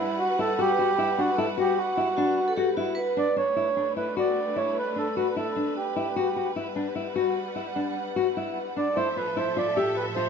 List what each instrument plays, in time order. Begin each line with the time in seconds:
Already playing: string section G3 B4 F#5, accordion E4
0.00 nylon-string guitar D4
0.19 accordion F#4
0.39 nylon-string guitar E4, accordion A4
0.59 nylon-string guitar F#4, accordion G4
0.79 nylon-string guitar F#4
0.98 nylon-string guitar E4
1.18 nylon-string guitar D4, accordion F#4
1.37 nylon-string guitar E4, accordion A4
1.58 nylon-string guitar F#4, accordion G4
1.78 accordion F#4
1.97 nylon-string guitar E4
2.17 nylon-string guitar D4, vibraphone F#4
2.48 vibraphone A4
2.57 nylon-string guitar F#4, vibraphone G4
2.77 nylon-string guitar E4, vibraphone F#4
2.95 vibraphone B4
3.17 nylon-string guitar D4, accordion D5
3.36 string section G3 A3 D4 B4, nylon-string guitar D4, accordion C#5
3.56 nylon-string guitar E4
3.77 nylon-string guitar D4
3.96 nylon-string guitar E4, accordion B4
4.17 nylon-string guitar F#4, accordion D5
4.56 nylon-string guitar E4, accordion C#5
4.79 accordion B4
4.96 nylon-string guitar D4, accordion A4
5.17 nylon-string guitar F#4, accordion B4
5.30 accordion B4
5.36 nylon-string guitar E4, accordion A4
5.56 nylon-string guitar D4
5.77 accordion G4
5.96 nylon-string guitar E4
6.16 string section G3 F#5, nylon-string guitar F#4
6.36 nylon-string guitar F#4
6.56 nylon-string guitar E4
6.76 nylon-string guitar D4
6.96 nylon-string guitar E4
7.16 nylon-string guitar F#4
7.56 nylon-string guitar E4
7.76 nylon-string guitar D4
8.16 nylon-string guitar F#4
8.37 nylon-string guitar E4
8.77 nylon-string guitar D4, accordion D5
8.96 string section A2 F3 A4 E5, nylon-string guitar E4, accordion C5
9.17 nylon-string guitar F4, accordion B4
9.37 nylon-string guitar E4, accordion C5
9.57 nylon-string guitar F4, accordion D5
9.75 nylon-string guitar G4, accordion E5
9.97 accordion B4
10.15 nylon-string guitar F4, accordion C5